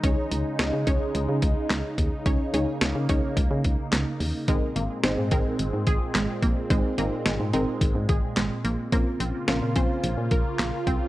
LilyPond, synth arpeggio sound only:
\new Staff \with { instrumentName = "Synth arpeggio sound" } { \time 4/4 \key aes \major \tempo 4 = 108 r1 | r1 | aes8 bes8 aes8 c'8 r8 aes'8 aes8 bes8 | aes8 bes8 aes8 c'8 r8 aes'8 aes8 bes8 |
bes8 c'8 bes8 des'8 r8 bes'8 bes8 c'8 | }